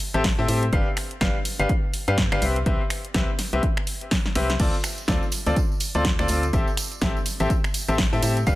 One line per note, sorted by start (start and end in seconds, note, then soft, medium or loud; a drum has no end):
0.00 open hi-hat loud
0.14 0.36 A1 medium
0.14 0.24 C4 medium
0.14 0.24 G4 medium
0.14 0.24 A4 medium
0.14 0.24 E5 loud
0.14 closed hi-hat medium
0.24 kick loud
0.24 snare loud
0.24 open hi-hat medium
0.38 0.46 A2 loud
0.38 0.46 C4 loud
0.38 0.46 G4 medium
0.38 0.46 A4 medium
0.38 0.46 E5 loud
0.48 0.71 A2 loud
0.48 0.62 C4 medium
0.48 0.62 G4 medium
0.48 0.62 A4 medium
0.48 0.62 E5 medium
0.48 open hi-hat loud
0.63 closed hi-hat medium
0.73 0.83 G1 medium
0.73 0.86 D4 medium
0.73 0.86 G4 medium
0.73 0.86 B4 medium
0.73 0.86 F5 loud
0.73 kick loud
0.73 closed hi-hat medium
0.97 finger snap medium
0.97 open hi-hat medium
1.11 closed hi-hat medium
1.21 1.32 G1 loud
1.21 1.35 D4 medium
1.21 1.35 G4 medium
1.21 1.35 B4 medium
1.21 1.35 F5 medium
1.21 kick loud
1.21 snare loud
1.21 closed hi-hat medium
1.45 open hi-hat loud
1.59 1.67 G1 medium
1.59 1.69 D4 medium
1.59 1.69 G4 medium
1.59 1.69 B4 medium
1.59 1.69 F5 medium
1.59 closed hi-hat medium
1.69 kick loud
1.69 closed hi-hat medium
1.94 open hi-hat loud
2.08 2.29 G2 medium
2.08 2.17 D4 medium
2.08 2.17 G4 medium
2.08 2.17 B4 medium
2.08 2.17 F5 loud
2.08 closed hi-hat medium
2.18 kick loud
2.18 snare loud
2.18 closed hi-hat medium
2.32 2.40 G1 medium
2.32 2.40 D4 loud
2.32 2.40 G4 medium
2.32 2.40 B4 medium
2.32 2.40 F5 loud
2.32 finger snap medium
2.42 2.64 C2 loud
2.42 2.56 C4 medium
2.42 2.56 G4 medium
2.42 2.56 B4 medium
2.42 2.56 E5 medium
2.42 open hi-hat loud
2.56 closed hi-hat medium
2.66 2.77 C2 loud
2.66 2.80 C4 medium
2.66 2.80 G4 medium
2.66 2.80 B4 medium
2.66 2.80 E5 loud
2.66 kick loud
2.66 closed hi-hat medium
2.90 finger snap medium
2.90 open hi-hat loud
3.05 closed hi-hat medium
3.14 3.25 C2 medium
3.14 3.28 C4 medium
3.14 3.28 G4 medium
3.14 3.28 B4 medium
3.14 3.28 E5 medium
3.14 kick loud
3.14 snare loud
3.14 closed hi-hat medium
3.39 snare soft
3.39 open hi-hat loud
3.53 3.60 C2 medium
3.53 3.62 C4 medium
3.53 3.62 G4 medium
3.53 3.62 B4 medium
3.53 3.62 E5 loud
3.53 closed hi-hat medium
3.63 kick loud
3.63 closed hi-hat medium
3.77 finger snap medium
3.87 open hi-hat loud
4.01 closed hi-hat medium
4.11 kick medium
4.11 snare loud
4.11 open hi-hat medium
4.26 snare medium
4.35 4.58 C2 loud
4.35 4.49 C4 medium
4.35 4.49 G4 medium
4.35 4.49 B4 medium
4.35 4.49 E5 loud
4.35 snare medium
4.35 open hi-hat loud
4.50 snare medium
4.50 closed hi-hat medium
4.60 4.70 D2 loud
4.60 4.73 C4 medium
4.60 4.73 F4 medium
4.60 4.73 A4 medium
4.60 4.73 D5 loud
4.60 kick loud
4.60 closed hi-hat medium
4.60 crash medium
4.60 tambourine soft
4.74 tambourine soft
4.84 finger snap medium
4.84 open hi-hat loud
4.84 tambourine medium
4.98 closed hi-hat medium
4.98 tambourine soft
5.08 5.19 D2 loud
5.08 5.22 C4 medium
5.08 5.22 F4 medium
5.08 5.22 A4 medium
5.08 5.22 D5 medium
5.08 kick loud
5.08 snare loud
5.08 closed hi-hat medium
5.08 tambourine medium
5.08 high conga medium
5.23 tambourine soft
5.32 open hi-hat loud
5.32 tambourine loud
5.46 5.54 D2 medium
5.46 5.56 C4 medium
5.46 5.56 F4 medium
5.46 5.56 A4 medium
5.46 5.56 D5 medium
5.46 closed hi-hat medium
5.46 tambourine soft
5.46 high conga medium
5.56 kick loud
5.56 closed hi-hat medium
5.56 tambourine medium
5.72 tambourine soft
5.80 open hi-hat loud
5.80 tambourine medium
5.94 6.16 D2 medium
5.94 6.04 C4 medium
5.94 6.04 F4 medium
5.94 6.04 A4 medium
5.94 6.04 D5 loud
5.94 closed hi-hat medium
5.94 tambourine soft
5.94 high conga medium
6.05 kick loud
6.05 snare loud
6.05 closed hi-hat medium
6.05 tambourine medium
6.19 6.27 D2 loud
6.19 6.27 C4 medium
6.19 6.27 F4 medium
6.19 6.27 A4 medium
6.19 6.27 D5 loud
6.19 finger snap medium
6.19 tambourine soft
6.28 6.51 D2 loud
6.28 6.43 C4 medium
6.28 6.43 F4 medium
6.28 6.43 A4 medium
6.28 6.43 D5 medium
6.28 open hi-hat loud
6.28 tambourine medium
6.43 closed hi-hat medium
6.43 tambourine soft
6.53 6.64 A1 medium
6.53 6.67 C4 medium
6.53 6.67 G4 medium
6.53 6.67 A4 medium
6.53 6.67 E5 loud
6.53 kick loud
6.53 closed hi-hat medium
6.53 tambourine medium
6.68 tambourine soft
6.77 finger snap medium
6.77 open hi-hat loud
6.77 tambourine loud
6.92 closed hi-hat soft
6.92 tambourine soft
7.01 7.12 A1 medium
7.01 7.15 C4 medium
7.01 7.15 G4 medium
7.01 7.15 A4 medium
7.01 7.15 E5 medium
7.01 kick loud
7.01 snare loud
7.01 closed hi-hat medium
7.01 tambourine medium
7.01 high conga medium
7.17 tambourine soft
7.26 open hi-hat loud
7.26 tambourine medium
7.40 7.48 A1 medium
7.40 7.50 C4 medium
7.40 7.50 G4 medium
7.40 7.50 A4 medium
7.40 7.50 E5 medium
7.40 closed hi-hat medium
7.40 tambourine soft
7.40 high conga medium
7.50 kick loud
7.50 closed hi-hat medium
7.50 tambourine medium
7.64 finger snap medium
7.64 tambourine soft
7.74 open hi-hat loud
7.74 tambourine medium
7.88 8.10 A1 loud
7.88 7.98 C4 medium
7.88 7.98 G4 medium
7.88 7.98 A4 medium
7.88 7.98 E5 loud
7.88 closed hi-hat medium
7.88 tambourine soft
7.98 kick loud
7.98 snare loud
7.98 open hi-hat medium
7.98 tambourine medium
8.13 8.21 A2 loud
8.13 8.20 C4 loud
8.13 8.20 G4 medium
8.13 8.20 A4 medium
8.13 8.20 E5 loud
8.13 tambourine soft
8.23 8.45 A2 loud
8.23 8.36 C4 medium
8.23 8.36 G4 medium
8.23 8.36 A4 medium
8.23 8.36 E5 medium
8.23 open hi-hat loud
8.23 tambourine loud
8.37 closed hi-hat medium
8.37 tambourine soft
8.47 8.55 G1 medium
8.47 8.55 D4 medium
8.47 8.55 G4 medium
8.47 8.55 B4 medium
8.47 8.55 F5 loud
8.47 kick loud
8.47 closed hi-hat medium
8.47 tambourine medium